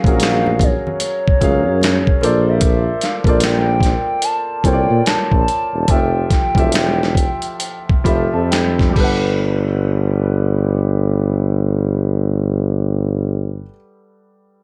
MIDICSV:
0, 0, Header, 1, 5, 480
1, 0, Start_track
1, 0, Tempo, 802139
1, 1562, Time_signature, 4, 2, 24, 8
1, 2526, Tempo, 834492
1, 3966, Tempo, 884956
1, 4926, Tempo, 925926
1, 5406, Tempo, 940439
1, 8067, End_track
2, 0, Start_track
2, 0, Title_t, "Soft synth lead"
2, 0, Program_c, 0, 80
2, 0, Note_on_c, 0, 77, 107
2, 380, Note_on_c, 0, 73, 95
2, 389, Note_off_c, 0, 77, 0
2, 1343, Note_on_c, 0, 74, 96
2, 1352, Note_off_c, 0, 73, 0
2, 1490, Note_on_c, 0, 76, 97
2, 1499, Note_off_c, 0, 74, 0
2, 1811, Note_off_c, 0, 76, 0
2, 1814, Note_on_c, 0, 77, 90
2, 1898, Note_off_c, 0, 77, 0
2, 2057, Note_on_c, 0, 79, 110
2, 2537, Note_on_c, 0, 81, 107
2, 2546, Note_off_c, 0, 79, 0
2, 2771, Note_on_c, 0, 79, 109
2, 2780, Note_off_c, 0, 81, 0
2, 3003, Note_off_c, 0, 79, 0
2, 3009, Note_on_c, 0, 81, 115
2, 3490, Note_on_c, 0, 79, 98
2, 3499, Note_off_c, 0, 81, 0
2, 4932, Note_off_c, 0, 79, 0
2, 8067, End_track
3, 0, Start_track
3, 0, Title_t, "Grand piano"
3, 0, Program_c, 1, 0
3, 0, Control_c, 1, 64, 127
3, 0, Note_on_c, 1, 54, 68
3, 0, Note_on_c, 1, 61, 56
3, 0, Note_on_c, 1, 68, 56
3, 0, Note_on_c, 1, 70, 57
3, 0, Note_on_c, 1, 77, 74
3, 33, Note_off_c, 1, 54, 0
3, 33, Note_on_c, 1, 54, 68
3, 37, Note_off_c, 1, 61, 0
3, 37, Note_on_c, 1, 61, 57
3, 44, Note_off_c, 1, 68, 0
3, 44, Note_on_c, 1, 68, 64
3, 48, Note_off_c, 1, 70, 0
3, 48, Note_on_c, 1, 70, 63
3, 53, Note_on_c, 1, 66, 68
3, 801, Note_off_c, 1, 54, 0
3, 803, Note_off_c, 1, 61, 0
3, 806, Note_off_c, 1, 68, 0
3, 809, Note_off_c, 1, 70, 0
3, 811, Note_off_c, 1, 66, 0
3, 842, Note_on_c, 1, 54, 64
3, 847, Note_on_c, 1, 61, 62
3, 853, Note_on_c, 1, 68, 65
3, 858, Note_on_c, 1, 70, 56
3, 862, Note_off_c, 1, 77, 0
3, 862, Note_on_c, 1, 77, 76
3, 1322, Note_off_c, 1, 54, 0
3, 1323, Note_on_c, 1, 58, 68
3, 1324, Note_off_c, 1, 61, 0
3, 1328, Note_off_c, 1, 68, 0
3, 1328, Note_on_c, 1, 65, 60
3, 1330, Note_off_c, 1, 70, 0
3, 1330, Control_c, 1, 64, 0
3, 1332, Note_off_c, 1, 77, 0
3, 1333, Note_on_c, 1, 69, 71
3, 1338, Note_on_c, 1, 72, 71
3, 1343, Note_on_c, 1, 74, 80
3, 1450, Control_c, 1, 64, 127
3, 1902, Note_off_c, 1, 58, 0
3, 1904, Note_off_c, 1, 65, 0
3, 1907, Note_off_c, 1, 69, 0
3, 1909, Note_off_c, 1, 72, 0
3, 1912, Note_off_c, 1, 74, 0
3, 1947, Note_on_c, 1, 58, 65
3, 1954, Note_on_c, 1, 65, 62
3, 1955, Note_on_c, 1, 69, 57
3, 1965, Note_on_c, 1, 72, 61
3, 1968, Note_on_c, 1, 74, 76
3, 2718, Note_off_c, 1, 58, 0
3, 2721, Note_off_c, 1, 65, 0
3, 2722, Note_off_c, 1, 69, 0
3, 2726, Note_off_c, 1, 72, 0
3, 2728, Note_off_c, 1, 74, 0
3, 2762, Note_on_c, 1, 58, 64
3, 2765, Note_on_c, 1, 65, 61
3, 2770, Note_on_c, 1, 69, 53
3, 2776, Note_on_c, 1, 72, 56
3, 2782, Note_on_c, 1, 73, 54
3, 2819, Note_off_c, 1, 73, 0
3, 2819, Note_on_c, 1, 74, 69
3, 3441, Note_off_c, 1, 58, 0
3, 3443, Note_off_c, 1, 65, 0
3, 3445, Note_off_c, 1, 69, 0
3, 3448, Note_off_c, 1, 72, 0
3, 3470, Note_off_c, 1, 74, 0
3, 3481, Note_on_c, 1, 53, 61
3, 3484, Note_on_c, 1, 65, 57
3, 3485, Control_c, 1, 64, 0
3, 3488, Note_on_c, 1, 67, 52
3, 3495, Note_on_c, 1, 69, 53
3, 3497, Note_on_c, 1, 76, 64
3, 3595, Control_c, 1, 64, 127
3, 3845, Note_off_c, 1, 53, 0
3, 3846, Note_off_c, 1, 65, 0
3, 3849, Note_off_c, 1, 67, 0
3, 3852, Note_off_c, 1, 69, 0
3, 3853, Note_off_c, 1, 76, 0
3, 3871, Note_on_c, 1, 53, 63
3, 3878, Note_on_c, 1, 65, 60
3, 3881, Note_on_c, 1, 67, 61
3, 3887, Note_on_c, 1, 69, 55
3, 3891, Note_on_c, 1, 76, 74
3, 4638, Note_off_c, 1, 53, 0
3, 4641, Note_off_c, 1, 65, 0
3, 4642, Note_off_c, 1, 67, 0
3, 4645, Note_off_c, 1, 69, 0
3, 4647, Note_off_c, 1, 76, 0
3, 4680, Note_on_c, 1, 53, 71
3, 4684, Note_on_c, 1, 65, 68
3, 4687, Note_on_c, 1, 67, 63
3, 4688, Note_on_c, 1, 83, 64
3, 4691, Note_on_c, 1, 69, 65
3, 4697, Note_on_c, 1, 76, 79
3, 4826, Note_off_c, 1, 83, 0
3, 4840, Note_on_c, 1, 81, 56
3, 4923, Note_off_c, 1, 81, 0
3, 4934, Note_on_c, 1, 79, 60
3, 5135, Note_on_c, 1, 55, 68
3, 5145, Note_off_c, 1, 67, 0
3, 5152, Note_off_c, 1, 79, 0
3, 5152, Note_on_c, 1, 67, 65
3, 5163, Note_off_c, 1, 53, 0
3, 5164, Note_off_c, 1, 69, 0
3, 5165, Note_off_c, 1, 65, 0
3, 5170, Control_c, 1, 64, 0
3, 5172, Note_off_c, 1, 76, 0
3, 5172, Note_on_c, 1, 69, 62
3, 5189, Note_on_c, 1, 71, 65
3, 5209, Note_on_c, 1, 78, 70
3, 5256, Control_c, 1, 64, 127
3, 5413, Control_c, 1, 64, 0
3, 5517, Control_c, 1, 64, 127
3, 7543, Note_off_c, 1, 55, 0
3, 7560, Note_off_c, 1, 67, 0
3, 7578, Note_off_c, 1, 69, 0
3, 7596, Note_off_c, 1, 71, 0
3, 7616, Note_off_c, 1, 78, 0
3, 8067, End_track
4, 0, Start_track
4, 0, Title_t, "Tuba"
4, 0, Program_c, 2, 58
4, 28, Note_on_c, 2, 34, 77
4, 440, Note_off_c, 2, 34, 0
4, 848, Note_on_c, 2, 37, 85
4, 1004, Note_on_c, 2, 42, 77
4, 1013, Note_off_c, 2, 37, 0
4, 1204, Note_off_c, 2, 42, 0
4, 1331, Note_on_c, 2, 34, 98
4, 1736, Note_off_c, 2, 34, 0
4, 1944, Note_on_c, 2, 34, 78
4, 2359, Note_off_c, 2, 34, 0
4, 2770, Note_on_c, 2, 36, 76
4, 2892, Note_off_c, 2, 36, 0
4, 2916, Note_on_c, 2, 46, 86
4, 2989, Note_off_c, 2, 46, 0
4, 3005, Note_on_c, 2, 34, 39
4, 3063, Note_off_c, 2, 34, 0
4, 3158, Note_on_c, 2, 34, 83
4, 3230, Note_off_c, 2, 34, 0
4, 3396, Note_on_c, 2, 28, 75
4, 3470, Note_off_c, 2, 28, 0
4, 3485, Note_on_c, 2, 29, 83
4, 3689, Note_off_c, 2, 29, 0
4, 3868, Note_on_c, 2, 28, 71
4, 4277, Note_off_c, 2, 28, 0
4, 4688, Note_on_c, 2, 29, 66
4, 4815, Note_off_c, 2, 29, 0
4, 4840, Note_on_c, 2, 41, 77
4, 5151, Note_off_c, 2, 41, 0
4, 5170, Note_on_c, 2, 31, 85
4, 7577, Note_off_c, 2, 31, 0
4, 8067, End_track
5, 0, Start_track
5, 0, Title_t, "Drums"
5, 24, Note_on_c, 9, 36, 96
5, 39, Note_on_c, 9, 42, 42
5, 84, Note_off_c, 9, 36, 0
5, 99, Note_off_c, 9, 42, 0
5, 118, Note_on_c, 9, 42, 96
5, 137, Note_on_c, 9, 38, 122
5, 142, Note_on_c, 9, 39, 87
5, 178, Note_off_c, 9, 42, 0
5, 197, Note_off_c, 9, 38, 0
5, 202, Note_off_c, 9, 39, 0
5, 277, Note_on_c, 9, 63, 66
5, 337, Note_off_c, 9, 63, 0
5, 356, Note_on_c, 9, 36, 86
5, 364, Note_on_c, 9, 42, 65
5, 373, Note_on_c, 9, 62, 25
5, 373, Note_on_c, 9, 64, 60
5, 415, Note_off_c, 9, 36, 0
5, 423, Note_off_c, 9, 42, 0
5, 433, Note_off_c, 9, 62, 0
5, 433, Note_off_c, 9, 64, 0
5, 520, Note_on_c, 9, 64, 62
5, 579, Note_off_c, 9, 64, 0
5, 598, Note_on_c, 9, 42, 77
5, 607, Note_on_c, 9, 62, 30
5, 658, Note_off_c, 9, 42, 0
5, 667, Note_off_c, 9, 62, 0
5, 763, Note_on_c, 9, 36, 81
5, 823, Note_off_c, 9, 36, 0
5, 844, Note_on_c, 9, 62, 29
5, 844, Note_on_c, 9, 63, 64
5, 846, Note_on_c, 9, 36, 68
5, 847, Note_on_c, 9, 42, 62
5, 903, Note_off_c, 9, 62, 0
5, 903, Note_off_c, 9, 63, 0
5, 906, Note_off_c, 9, 36, 0
5, 907, Note_off_c, 9, 42, 0
5, 1085, Note_on_c, 9, 62, 23
5, 1085, Note_on_c, 9, 63, 52
5, 1095, Note_on_c, 9, 42, 66
5, 1102, Note_on_c, 9, 38, 94
5, 1107, Note_on_c, 9, 39, 75
5, 1145, Note_off_c, 9, 62, 0
5, 1145, Note_off_c, 9, 63, 0
5, 1155, Note_off_c, 9, 42, 0
5, 1161, Note_off_c, 9, 38, 0
5, 1167, Note_off_c, 9, 39, 0
5, 1240, Note_on_c, 9, 36, 79
5, 1300, Note_off_c, 9, 36, 0
5, 1322, Note_on_c, 9, 62, 28
5, 1337, Note_on_c, 9, 42, 55
5, 1382, Note_off_c, 9, 62, 0
5, 1397, Note_off_c, 9, 42, 0
5, 1561, Note_on_c, 9, 42, 93
5, 1564, Note_on_c, 9, 36, 109
5, 1620, Note_off_c, 9, 42, 0
5, 1624, Note_off_c, 9, 36, 0
5, 1804, Note_on_c, 9, 42, 54
5, 1817, Note_on_c, 9, 38, 29
5, 1863, Note_off_c, 9, 42, 0
5, 1876, Note_off_c, 9, 38, 0
5, 1941, Note_on_c, 9, 36, 93
5, 1956, Note_on_c, 9, 42, 39
5, 2001, Note_off_c, 9, 36, 0
5, 2015, Note_off_c, 9, 42, 0
5, 2037, Note_on_c, 9, 42, 87
5, 2056, Note_on_c, 9, 38, 111
5, 2061, Note_on_c, 9, 39, 93
5, 2097, Note_off_c, 9, 42, 0
5, 2116, Note_off_c, 9, 38, 0
5, 2121, Note_off_c, 9, 39, 0
5, 2277, Note_on_c, 9, 36, 80
5, 2291, Note_on_c, 9, 42, 62
5, 2302, Note_on_c, 9, 38, 30
5, 2337, Note_off_c, 9, 36, 0
5, 2350, Note_off_c, 9, 42, 0
5, 2361, Note_off_c, 9, 38, 0
5, 2525, Note_on_c, 9, 42, 73
5, 2583, Note_off_c, 9, 42, 0
5, 2766, Note_on_c, 9, 36, 61
5, 2771, Note_on_c, 9, 42, 56
5, 2824, Note_off_c, 9, 36, 0
5, 2828, Note_off_c, 9, 42, 0
5, 3010, Note_on_c, 9, 42, 58
5, 3016, Note_on_c, 9, 38, 90
5, 3021, Note_on_c, 9, 39, 70
5, 3067, Note_off_c, 9, 42, 0
5, 3074, Note_off_c, 9, 38, 0
5, 3078, Note_off_c, 9, 39, 0
5, 3155, Note_on_c, 9, 36, 79
5, 3213, Note_off_c, 9, 36, 0
5, 3251, Note_on_c, 9, 42, 57
5, 3309, Note_off_c, 9, 42, 0
5, 3480, Note_on_c, 9, 42, 85
5, 3481, Note_on_c, 9, 36, 102
5, 3537, Note_off_c, 9, 42, 0
5, 3539, Note_off_c, 9, 36, 0
5, 3724, Note_on_c, 9, 36, 74
5, 3724, Note_on_c, 9, 42, 58
5, 3737, Note_on_c, 9, 38, 27
5, 3782, Note_off_c, 9, 36, 0
5, 3782, Note_off_c, 9, 42, 0
5, 3794, Note_off_c, 9, 38, 0
5, 3865, Note_on_c, 9, 36, 89
5, 3881, Note_on_c, 9, 42, 40
5, 3922, Note_off_c, 9, 36, 0
5, 3938, Note_off_c, 9, 42, 0
5, 3964, Note_on_c, 9, 42, 87
5, 3982, Note_on_c, 9, 38, 114
5, 3986, Note_on_c, 9, 39, 88
5, 4019, Note_off_c, 9, 42, 0
5, 4036, Note_off_c, 9, 38, 0
5, 4041, Note_off_c, 9, 39, 0
5, 4133, Note_on_c, 9, 38, 29
5, 4187, Note_off_c, 9, 38, 0
5, 4196, Note_on_c, 9, 36, 71
5, 4209, Note_on_c, 9, 42, 58
5, 4251, Note_off_c, 9, 36, 0
5, 4263, Note_off_c, 9, 42, 0
5, 4343, Note_on_c, 9, 42, 36
5, 4397, Note_off_c, 9, 42, 0
5, 4440, Note_on_c, 9, 42, 73
5, 4494, Note_off_c, 9, 42, 0
5, 4601, Note_on_c, 9, 36, 71
5, 4655, Note_off_c, 9, 36, 0
5, 4685, Note_on_c, 9, 36, 68
5, 4689, Note_on_c, 9, 42, 57
5, 4739, Note_off_c, 9, 36, 0
5, 4743, Note_off_c, 9, 42, 0
5, 4939, Note_on_c, 9, 42, 65
5, 4945, Note_on_c, 9, 38, 82
5, 4949, Note_on_c, 9, 39, 65
5, 4991, Note_off_c, 9, 42, 0
5, 4996, Note_off_c, 9, 38, 0
5, 5001, Note_off_c, 9, 39, 0
5, 5081, Note_on_c, 9, 36, 69
5, 5088, Note_on_c, 9, 38, 26
5, 5133, Note_off_c, 9, 36, 0
5, 5140, Note_off_c, 9, 38, 0
5, 5167, Note_on_c, 9, 36, 84
5, 5168, Note_on_c, 9, 49, 77
5, 5219, Note_off_c, 9, 36, 0
5, 5220, Note_off_c, 9, 49, 0
5, 8067, End_track
0, 0, End_of_file